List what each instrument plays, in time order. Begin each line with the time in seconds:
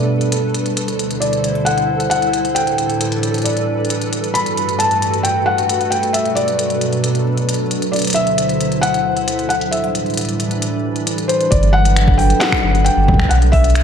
Already playing: ambient pad B2 G3 A3 D4 B4, synth texture A4, felt piano D5
0.21 closed hi-hat
0.32 closed hi-hat
0.55 closed hi-hat
0.66 closed hi-hat
0.77 ambient pad D2 D3 E4 C5, closed hi-hat
0.88 closed hi-hat
0.99 closed hi-hat
1.11 closed hi-hat
1.20 felt piano D5, closed hi-hat
1.33 closed hi-hat
1.44 closed hi-hat
1.55 closed hi-hat
1.65 felt piano F#5, closed hi-hat
1.78 closed hi-hat
2.00 closed hi-hat
2.10 felt piano F#5, closed hi-hat
2.22 closed hi-hat
2.33 closed hi-hat
2.45 closed hi-hat
2.55 ambient pad A2 E3 G3 D4 B4, felt piano G5, closed hi-hat
2.67 closed hi-hat
2.78 closed hi-hat
2.90 closed hi-hat
3.01 closed hi-hat
3.12 closed hi-hat
3.23 closed hi-hat
3.34 closed hi-hat
3.38 closed hi-hat
3.42 felt piano D5, closed hi-hat
3.46 closed hi-hat
3.49 closed hi-hat
3.53 closed hi-hat
3.57 closed hi-hat
3.85 closed hi-hat
3.90 closed hi-hat
4.01 closed hi-hat
4.13 closed hi-hat
4.24 closed hi-hat
4.34 ambient pad G2 A3 F#4, felt piano B5, closed hi-hat
4.46 closed hi-hat
4.57 closed hi-hat
4.69 closed hi-hat
4.79 felt piano A5, closed hi-hat
4.91 closed hi-hat
5.02 closed hi-hat
5.14 closed hi-hat
5.23 felt piano G5, closed hi-hat
5.46 felt piano F#5
5.58 closed hi-hat
5.69 closed hi-hat
5.81 closed hi-hat
5.90 felt piano G5, closed hi-hat
6.03 closed hi-hat
6.13 ambient pad B2 F#3 D4, felt piano E5, closed hi-hat
6.25 closed hi-hat
6.35 felt piano D5, closed hi-hat
6.48 closed hi-hat
6.59 closed hi-hat
6.70 closed hi-hat
6.81 closed hi-hat
6.93 closed hi-hat
7.04 closed hi-hat
7.15 closed hi-hat
7.37 closed hi-hat
7.49 closed hi-hat
7.54 closed hi-hat
7.71 closed hi-hat
7.82 closed hi-hat
7.92 ambient pad D2 D3 E4 C5, felt piano D5, closed hi-hat
7.96 closed hi-hat
7.99 closed hi-hat
8.02 closed hi-hat
8.05 closed hi-hat
8.07 closed hi-hat
8.10 closed hi-hat
8.13 felt piano E5, closed hi-hat
8.16 closed hi-hat
8.27 closed hi-hat
8.38 closed hi-hat
8.49 closed hi-hat
8.61 closed hi-hat
8.72 closed hi-hat
8.81 felt piano F#5, closed hi-hat
8.94 closed hi-hat
9.17 closed hi-hat
9.28 closed hi-hat
9.39 closed hi-hat
9.49 felt piano F#5, closed hi-hat
9.61 closed hi-hat
9.71 ambient pad A2 E3 G3 D4 B4, felt piano E5, closed hi-hat
9.84 closed hi-hat
9.95 closed hi-hat
10.06 closed hi-hat
10.10 closed hi-hat
10.14 closed hi-hat
10.17 closed hi-hat
10.21 closed hi-hat
10.25 closed hi-hat
10.29 closed hi-hat
10.40 closed hi-hat
10.51 closed hi-hat
10.62 closed hi-hat
10.96 closed hi-hat
11.07 closed hi-hat
11.18 closed hi-hat
11.28 felt piano C5, closed hi-hat
11.41 closed hi-hat
11.51 sub bass G1, ambient pad F#3 G3 D4 A4 B4, felt piano D5, kick, closed hi-hat
11.63 closed hi-hat
11.73 felt piano F#5
11.85 closed hi-hat
11.96 finger snap, closed hi-hat
12.08 kick
12.18 felt piano G5, open hi-hat
12.30 closed hi-hat
12.40 felt piano F#5, snare, closed hi-hat
12.52 finger snap, kick
12.64 sub bass G1
12.75 closed hi-hat
12.85 felt piano G5, closed hi-hat
12.97 sub bass G1
13.08 kick, high tom
13.14 kick
13.20 finger snap, kick
13.25 kick
13.29 sub bass B1, ambient pad A3 B3, felt piano F#5, closed hi-hat
13.42 closed hi-hat
13.52 felt piano E5, kick, open hi-hat
13.64 closed hi-hat
13.70 closed hi-hat
13.75 finger snap, closed hi-hat